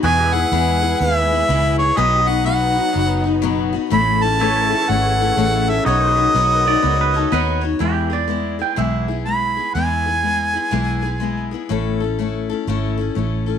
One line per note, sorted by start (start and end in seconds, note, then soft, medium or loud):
0.03 0.34 E2 medium
0.03 0.44 E2 medium
0.03 0.34 B2 medium
0.03 0.35 E3 medium
0.03 1.96 G#3 medium
0.03 0.35 B3 medium
0.03 1.96 E4 medium
0.03 0.34 E4 medium
0.03 0.29 F#4 medium
0.03 1.95 G#4 medium
0.03 0.32 G#4 medium
0.03 1.96 B4 medium
0.03 0.25 D#5 medium
0.03 0.35 G#5 loud
0.25 1.96 G#4 medium
0.25 1.97 E5 medium
0.33 0.51 E3 soft
0.33 0.52 B3 medium
0.33 0.52 E4 medium
0.33 0.52 G#4 medium
0.33 1.01 F#5 loud
0.51 0.83 E2 medium
0.51 0.93 E2 medium
0.51 0.83 B2 medium
0.51 0.83 E3 medium
0.51 0.83 B3 medium
0.51 0.81 E4 medium
0.51 0.80 G#4 medium
0.81 0.98 E3 medium
0.81 1.00 B3 medium
0.81 1.00 E4 medium
0.81 1.00 G#4 medium
1.00 1.42 D#2 medium
1.00 1.31 E3 medium
1.00 1.32 B3 medium
1.00 1.31 E4 medium
1.00 1.30 G#4 medium
1.00 1.17 F5 loud
1.17 1.78 E5 loud
1.31 1.48 E3 soft
1.31 1.49 B3 soft
1.31 1.49 E4 soft
1.31 1.49 G#4 medium
1.48 1.90 C#2 medium
1.48 1.79 E2 medium
1.48 1.80 B2 medium
1.48 1.80 E3 medium
1.48 1.80 B3 medium
1.48 1.79 E4 medium
1.48 1.78 G#4 medium
1.79 1.97 E3 soft
1.79 1.97 B3 soft
1.79 1.98 E4 medium
1.79 1.97 G#4 medium
1.79 1.99 C#5 medium
1.97 2.79 B1 medium
1.97 2.28 B2 medium
1.97 2.28 F#3 medium
1.97 3.90 F#3 medium
1.97 3.90 B3 medium
1.97 2.29 B3 medium
1.97 3.90 D#4 medium
1.97 2.27 D#4 medium
1.97 2.25 F#4 medium
1.97 2.22 G#4 medium
1.97 3.90 B4 medium
1.97 2.29 D#5 loud
1.97 3.91 D#5 medium
2.22 3.90 F#4 medium
2.26 2.45 B3 soft
2.26 2.45 D#4 medium
2.26 2.45 F#4 medium
2.26 2.45 F#5 medium
2.44 2.76 B2 medium
2.44 2.77 F#3 medium
2.44 2.77 B3 medium
2.44 2.76 D#4 medium
2.44 2.74 F#4 loud
2.44 3.39 F#5 medium
2.75 2.93 B3 medium
2.75 2.94 D#4 medium
2.75 2.94 F#4 medium
2.93 3.76 F#1 medium
2.93 3.25 F#3 medium
2.93 3.25 B3 medium
2.93 3.24 D#4 medium
2.93 3.22 F#4 medium
3.24 3.42 B3 soft
3.24 3.42 D#4 medium
3.24 3.42 F#4 medium
3.42 3.73 B2 loud
3.42 3.74 F#3 medium
3.42 3.74 B3 medium
3.42 3.73 D#4 loud
3.42 3.71 F#4 loud
3.73 3.92 B3 medium
3.73 3.92 D#4 medium
3.73 3.91 F#4 medium
3.90 4.73 A1 loud
3.90 4.22 A2 medium
3.90 7.76 C#3 medium
3.90 5.84 E3 medium
3.90 4.22 A3 medium
3.90 5.84 A3 medium
3.90 4.23 C#4 medium
3.90 4.22 E4 medium
3.90 4.20 A4 medium
3.90 4.24 B5 loud
4.22 4.39 C#4 medium
4.22 4.40 E4 medium
4.22 4.40 A4 medium
4.22 4.91 A5 loud
4.39 4.71 A2 medium
4.39 4.71 A3 medium
4.39 4.71 C#4 medium
4.39 4.71 E4 medium
4.39 5.85 E4 medium
4.39 4.69 A4 medium
4.39 4.67 B4 medium
4.39 5.86 C#5 medium
4.67 5.86 A4 medium
4.67 4.88 A4 medium
4.72 4.89 C#4 medium
4.72 4.89 E4 medium
4.89 5.30 G#1 medium
4.89 5.20 A3 medium
4.89 5.20 C#4 medium
4.89 5.20 E4 medium
4.89 5.18 A4 medium
4.89 5.71 F#5 loud
5.20 5.37 C#4 soft
5.20 5.37 E4 soft
5.20 5.37 A4 soft
5.37 5.79 A1 medium
5.37 5.68 A2 medium
5.37 5.68 A3 medium
5.37 5.69 C#4 medium
5.37 5.68 E4 medium
5.37 5.67 A4 medium
5.68 5.87 C#4 soft
5.68 5.87 E4 soft
5.68 5.86 A4 medium
5.68 5.85 E5 medium
5.85 6.27 B1 medium
5.85 7.79 D#3 medium
5.85 6.17 B3 medium
5.85 7.79 B3 medium
5.85 7.78 D#4 medium
5.85 6.17 D#4 medium
5.85 7.78 F#4 medium
5.85 6.17 F#4 medium
5.85 6.12 C#5 medium
5.85 6.16 C#5 medium
5.85 7.58 D#5 loud
6.12 7.79 B4 medium
6.17 6.34 D#4 soft
6.17 6.35 F#4 medium
6.17 6.35 C#5 medium
6.34 6.76 B1 medium
6.34 6.66 B3 medium
6.34 6.66 D#4 medium
6.34 6.66 F#4 medium
6.34 6.64 C#5 medium
6.65 6.83 D#4 medium
6.65 6.84 F#4 medium
6.65 6.83 C#5 medium
6.65 6.99 D5 medium
6.83 7.25 C#2 medium
6.83 7.14 B3 medium
6.83 7.14 D#4 medium
6.83 7.14 F#4 medium
6.83 7.13 C#5 medium
7.01 7.16 B4 medium
7.14 7.32 D#4 soft
7.14 7.32 F#4 soft
7.14 7.31 A4 medium
7.14 7.32 C#5 medium
7.32 7.73 D#2 medium
7.32 7.63 B3 medium
7.32 7.63 D#4 medium
7.32 7.62 F#4 medium
7.32 7.62 B4 medium
7.32 7.60 C#5 loud
7.61 7.81 D#4 medium
7.61 7.81 F#4 medium
7.61 7.80 C#5 medium
7.79 8.11 E2 medium
7.79 8.62 E2 medium
7.79 8.11 E3 medium
7.79 8.11 G#3 medium
7.79 8.12 B3 medium
7.79 8.10 E4 medium
7.79 8.12 G4 medium
7.79 8.09 G#4 medium
8.10 8.26 G#3 soft
8.10 8.27 B3 medium
8.10 8.29 E4 medium
8.10 8.28 G#4 medium
8.10 8.60 D5 medium
8.28 8.59 G#3 medium
8.28 8.60 B3 medium
8.28 8.59 E4 medium
8.28 8.58 G#4 medium
8.59 8.76 G#3 soft
8.59 8.77 B3 soft
8.59 8.78 E4 medium
8.59 8.77 G#4 medium
8.59 8.77 G5 medium
8.76 9.59 B1 medium
8.76 9.08 E2 medium
8.76 9.08 E3 medium
8.76 9.09 G#3 medium
8.76 9.09 B3 medium
8.76 9.08 E4 medium
8.76 9.07 G#4 medium
8.76 9.16 E5 medium
9.08 9.24 G#3 soft
9.08 9.25 B3 soft
9.08 9.27 E4 soft
9.08 9.26 G#4 soft
9.25 9.57 G#3 soft
9.25 9.57 B3 medium
9.25 9.57 E4 medium
9.25 9.56 G#4 medium
9.25 9.71 B5 loud
9.57 9.75 G#3 soft
9.57 9.75 B3 soft
9.57 9.76 E4 soft
9.57 9.75 G#4 soft
9.75 10.06 E2 medium
9.75 10.56 E2 medium
9.75 10.06 E3 medium
9.75 10.06 G#3 medium
9.75 10.07 B3 medium
9.75 10.06 E4 medium
9.75 10.05 G#4 medium
9.75 11.48 G#5 loud
10.06 10.22 G#3 soft
10.06 10.23 B3 soft
10.06 10.24 E4 soft
10.06 10.24 G#4 soft
10.23 10.54 G#3 medium
10.23 10.55 B3 soft
10.23 10.54 E4 medium
10.23 10.52 G#4 medium
10.53 10.71 G#3 soft
10.53 10.71 B3 soft
10.53 10.72 E4 medium
10.53 10.72 G#4 medium
10.71 11.54 B1 medium
10.71 11.03 E2 medium
10.71 11.03 E3 medium
10.71 11.03 G#3 medium
10.71 11.03 B3 medium
10.71 11.03 E4 medium
10.71 11.01 G#4 medium
11.02 11.19 G#3 soft
11.02 11.20 B3 soft
11.02 11.21 E4 soft
11.02 11.21 G#4 soft
11.20 11.52 G#3 medium
11.20 11.52 B3 medium
11.20 11.51 E4 medium
11.20 11.50 G#4 medium
11.51 11.70 B3 soft
11.51 11.70 E4 medium
11.51 11.69 G#4 medium
11.55 11.69 G#3 soft
11.69 12.52 A1 medium
11.69 12.00 A2 medium
11.69 12.01 A3 medium
11.69 12.01 C#4 medium
11.69 12.01 E4 medium
11.69 11.99 A4 medium
12.00 12.18 C#4 medium
12.00 12.19 E4 soft
12.00 12.18 A4 medium
12.19 12.50 A3 medium
12.19 12.50 C#4 medium
12.19 12.50 E4 medium
12.19 12.48 A4 medium
12.50 12.68 C#4 soft
12.50 12.68 E4 soft
12.50 12.67 A4 medium
12.67 13.09 G#1 medium
12.67 12.98 A2 medium
12.67 12.99 A3 medium
12.67 12.99 C#4 medium
12.67 12.98 E4 medium
12.67 12.96 A4 medium
12.98 13.15 C#4 soft
12.98 13.16 E4 soft
12.98 13.16 A4 medium
13.15 13.58 A1 medium
13.15 13.47 A3 medium
13.15 13.47 C#4 medium
13.15 13.47 E4 medium
13.15 13.45 A4 medium
13.46 13.59 C#4 soft
13.46 13.59 E4 soft
13.46 13.59 A4 medium